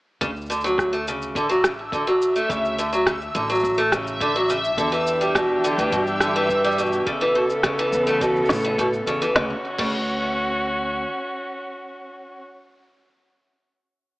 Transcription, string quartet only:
4.76 7.04 E3 medium
4.76 7.04 D4 medium
4.76 7.04 G4 medium
7.06 9.33 C#3 medium
7.06 9.33 B3 medium
7.06 9.33 A4 medium
9.35 12.40 C#4 medium
9.35 12.40 F#4 medium

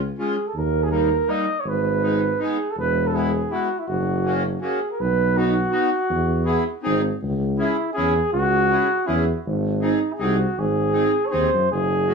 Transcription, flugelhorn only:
0.19 0.49 G#4 medium
0.47 0.59 A4 medium
0.58 0.85 A#4 medium
0.83 0.90 G#4 medium
0.91 1.31 A#4 medium
1.30 1.62 D#5 loud
1.60 1.70 C#5 medium
1.68 2.41 B4 medium
2.42 2.72 G#4 medium
2.71 2.78 A4 medium
2.79 3.08 B4 medium
3.07 3.16 A4 medium
3.15 3.54 G#4 medium
3.53 3.81 F#4 medium
3.79 3.89 E4 medium
3.88 4.36 F#4 medium
4.61 4.88 G#4 medium
4.91 5.02 A#4 medium
5.01 5.39 B4 medium
5.38 6.85 F#4 medium
7.58 7.93 E4 medium
7.93 8.29 G#4 medium
8.33 9.08 F#4 loud
9.07 9.44 E4 medium
9.83 10.15 D#4 medium
10.13 10.23 G#4 medium
10.21 10.61 F#4 medium
10.59 11.28 G#4 medium
11.26 11.34 C#5 medium
11.32 11.70 C5 medium
11.72 12.14 G#4 medium

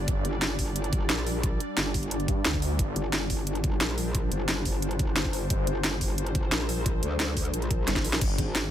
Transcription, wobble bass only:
0.25 1.08 G1 loud
1.10 1.59 A#1 loud
1.77 2.27 G1 loud
2.96 3.79 G1 loud
3.81 4.30 A#1 loud
4.32 5.15 G1 loud
5.16 5.49 G1 loud
5.67 6.51 G1 loud
6.52 7.01 A#1 loud
7.03 7.52 D2 loud
7.54 7.86 A#1 loud
8.04 8.20 A#1 loud
8.38 8.71 G#1 loud

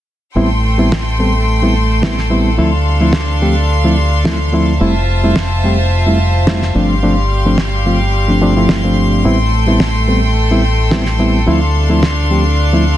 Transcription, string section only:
0.36 2.56 A3 medium
0.36 4.76 A4 medium
0.36 2.56 G5 medium
0.36 2.56 C6 medium
2.58 4.78 D4 medium
2.58 4.78 F5 medium
2.58 4.78 C6 medium
4.80 6.73 F4 medium
4.80 6.73 C5 medium
4.80 6.73 E5 medium
4.80 6.73 A5 medium
6.75 9.23 G3 medium
6.75 9.23 G4 medium
6.75 9.23 F5 medium
6.75 11.43 C6 medium
9.25 11.45 A3 medium
9.25 12.97 A4 medium
9.25 11.45 G5 medium
11.47 12.97 D4 medium
11.47 12.97 F5 medium
11.47 12.97 C6 medium

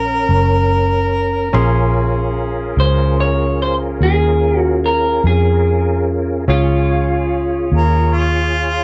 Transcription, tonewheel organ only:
0.00 1.49 C#4 medium
0.00 1.49 A#4 medium
1.53 6.45 C#4 medium
1.53 6.45 F4 medium
1.53 6.45 G#4 medium
1.53 6.45 A#4 medium
6.47 8.84 F4 medium
6.47 8.84 G#4 medium
6.47 8.84 C#5 medium

